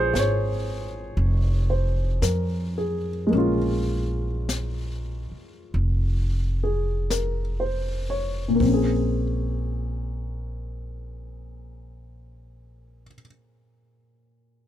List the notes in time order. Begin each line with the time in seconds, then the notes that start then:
Already playing: A#1 G#3 A#3 C#4 F4 G#4 C5 C#5
0.14 G#1 C5, brush sweep, snare, hi-hat pedal
0.19 C#5
1.17 F1, brush sweep
1.70 C5
2.22 F2 A#4, brush sweep, snare, hi-hat pedal
2.78 G#4
3.27 G#3 A#3
3.32 A#1 C#4, brush sweep
3.38 F4
4.49 brush sweep, snare, hi-hat pedal
5.31 muted upright bass stroke
5.74 F1, brush sweep
6.64 G#4
7.10 A#4, brush sweep, snare, hi-hat pedal
7.60 C5
8.10 C#5
8.48 A#2
8.55 A#3
8.60 A#1 C4, kick, open hi-hat
8.67 C#4
8.74 G#4